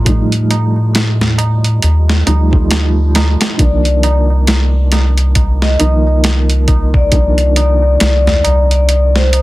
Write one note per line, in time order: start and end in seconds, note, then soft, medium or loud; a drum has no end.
0.00 1.80 A2 medium
0.00 0.05 F3 medium
0.00 0.06 G3 medium
0.00 0.07 A3 medium
0.00 3.62 F4 medium
0.05 2.23 F3 medium
0.05 2.23 G3 medium
0.05 2.24 A3 medium
0.05 2.25 D#4 medium
0.05 kick loud
0.05 closed hi-hat medium
0.05 tabla na medium
0.32 closed hi-hat soft
0.51 closed hi-hat medium
0.51 tabla na medium
0.76 tabla na soft
0.93 snare loud
0.93 closed hi-hat medium
0.93 tabla na soft
1.19 snare soft
1.19 tabla ge medium
1.38 closed hi-hat medium
1.38 tabla na medium
1.64 closed hi-hat soft
1.64 tabla na soft
1.82 2.23 D#2 medium
1.82 closed hi-hat medium
1.82 tabla na soft
2.08 snare soft
2.08 tabla na soft
2.26 3.36 D2 medium
2.26 2.46 F3 medium
2.26 2.47 G3 medium
2.26 2.47 A3 medium
2.26 2.47 D#4 medium
2.26 closed hi-hat medium
2.26 tabla na medium
2.51 3.54 F3 medium
2.51 3.55 G3 medium
2.51 3.55 A3 medium
2.51 3.56 D#4 medium
2.51 kick medium
2.51 tabla na soft
2.71 snare loud
2.71 closed hi-hat medium
2.71 tabla na soft
3.15 snare loud
3.15 closed hi-hat medium
3.15 tabla na medium
3.41 snare loud
3.41 closed hi-hat medium
3.41 tabla na soft
3.57 5.77 C2 medium
3.57 5.75 D#3 medium
3.57 5.75 F3 medium
3.57 5.76 A#3 medium
3.57 5.76 D4 medium
3.57 4.22 D5 medium
3.57 kick loud
3.57 closed hi-hat medium
3.57 tabla na soft
3.85 closed hi-hat soft
4.03 closed hi-hat medium
4.03 tabla na medium
4.30 tabla na soft
4.47 snare loud
4.47 closed hi-hat medium
4.47 tabla na soft
4.92 snare medium
4.92 closed hi-hat medium
4.92 tabla na medium
5.18 closed hi-hat soft
5.18 tabla na soft
5.35 kick medium
5.35 closed hi-hat medium
5.35 tabla na soft
5.62 6.19 D#5 medium
5.62 snare soft
5.62 tabla na soft
5.79 7.09 C2 medium
5.79 6.03 D#3 medium
5.79 6.03 F3 medium
5.79 6.03 A#3 medium
5.79 6.04 D#4 medium
5.79 closed hi-hat medium
5.79 tabla na medium
6.07 tabla na soft
6.24 snare loud
6.24 closed hi-hat medium
6.24 tabla na medium
6.50 closed hi-hat soft
6.68 kick medium
6.68 closed hi-hat medium
6.68 tabla na medium
6.94 7.51 D5 medium
6.94 kick medium
6.94 tabla na soft
6.94 tabla ge medium
7.11 7.97 C2 loud
7.11 9.42 D#3 medium
7.11 9.42 F3 medium
7.11 9.42 A#3 medium
7.11 9.42 D4 medium
7.11 kick loud
7.11 closed hi-hat medium
7.11 tabla na soft
7.38 closed hi-hat soft
7.56 7.97 D5 medium
7.56 closed hi-hat medium
7.56 tabla na medium
7.82 tabla na soft
8.00 8.41 C2 medium
8.00 8.63 D5 medium
8.00 snare loud
8.00 closed hi-hat medium
8.00 tabla na soft
8.26 snare medium
8.26 tabla ge medium
8.44 9.42 C2 loud
8.44 closed hi-hat medium
8.44 tabla na medium
8.71 9.10 D5 medium
8.71 closed hi-hat soft
8.71 tabla na soft
8.89 closed hi-hat medium
8.89 tabla na soft
9.15 9.42 C5 medium
9.15 snare soft
9.15 tabla na soft
9.33 closed hi-hat medium
9.33 tabla na medium